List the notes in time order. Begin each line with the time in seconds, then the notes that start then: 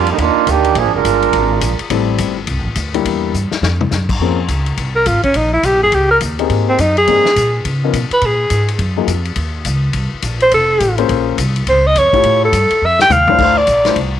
Already playing: F2
0.06 D3 G3 A#3 D#4, ride
0.18 D#2 A#3 D4 D#4 F4, kick, ride
0.36 muted upright bass stroke
0.47 D2 D#3 A#3 D4 G4, kick, hi-hat pedal, ride
0.64 ride
0.75 A#1 F3 A#3 D4 G#4, kick, ride
0.85 G#1
0.93 F1 G#3 D4 F4 A#4
1.04 G1, kick, hi-hat pedal, ride
1.22 ride
1.33 G#1, kick, ride
1.61 A#1, kick, hi-hat pedal, ride
1.79 muted upright bass stroke, ride
1.90 A1 G3 A3 C4 E4 A4, kick, ride
2.18 G1, kick, hi-hat pedal, ride
2.47 C2, kick, ride
2.59 A1
2.67 G1
2.75 D2, kick, hi-hat pedal, ride
2.94 G3 A#3 D4 E4 G4, ride
3.05 E2, kick, ride
3.34 G2, hi-hat pedal
3.52 muted upright bass stroke, snare
3.62 F2, snare
3.81 mid tom
3.91 F#2, snare, hi-hat pedal
4.09 kick, crash
4.20 F2 F3 A#3 C4 C#4 G#4, kick
4.48 C#2, kick, hi-hat pedal, ride
4.66 ride
4.77 C2, kick, ride
4.96 A#4
5.06 G#1 F4, kick, hi-hat pedal, ride
5.23 C#4, kick, ride
5.34 A#1 D#4, kick, ride
5.53 E4
5.63 B1 G4, kick, hi-hat pedal, ride
5.74 A#1
5.83 G1 G#4
5.92 C#2 G4, kick, ride
6.11 A#4
6.20 D#2, kick, hi-hat pedal, ride
6.39 A#3 C4 D#4 G4 G#4, ride
6.49 G#2, kick, ride
6.69 C4
6.78 F#2 D#4, kick, hi-hat pedal, ride
6.97 G#4, ride
7.07 G2 G3 A#3 C4 D#4 G#4, kick, ride
7.25 muted upright bass stroke, snare
7.36 A#2, kick, hi-hat pedal, ride
7.65 C#3, kick, ride
7.84 F3 B3 C#4 D#4 A#4
7.93 B2, kick, hi-hat pedal, ride
8.11 B4, muted upright bass stroke, ride
8.21 A#2, kick, ride
8.26 G#4
8.50 G#2, kick, hi-hat pedal, ride
8.68 ride
8.79 F#2, kick, ride
8.97 F#3 A#3 D#4 F4 G#4
9.07 F2, kick, hi-hat pedal, ride
9.25 ride
9.36 D#2, kick, ride
9.65 C#2, kick, hi-hat pedal, ride
9.93 C2, kick, ride
10.14 muted upright bass stroke
10.22 A#1, kick, hi-hat pedal, ride
10.40 C5, ride
10.51 F1 A4, kick, ride
10.80 A1, kick, hi-hat pedal, ride
10.98 A#3 C#4 F4 G#4 C5, ride
11.09 A#1, kick, ride
11.38 C2, kick, hi-hat pedal, ride
11.56 ride
11.67 C#2 C5, kick, ride
11.87 D#5
11.95 F2 C#5, kick, hi-hat pedal, ride
12.13 A3 E4 F4 G4 C#5, kick, ride
12.23 A2, kick, ride
12.45 A4
12.52 G2, kick, hi-hat pedal, ride
12.70 muted upright bass stroke, ride
12.82 F2 E5
12.99 G5, snare
13.09 D#2 F5, hi-hat pedal, mid tom
13.27 A3 D4 E4 F4 C5, floor tom
13.38 D2 A3 D4 E4 F4 C5, kick, crash
13.58 D5
13.67 A#1, kick, hi-hat pedal, ride
13.85 A3 D4 E4 F4 C5, snare, ride
13.96 C2, kick, ride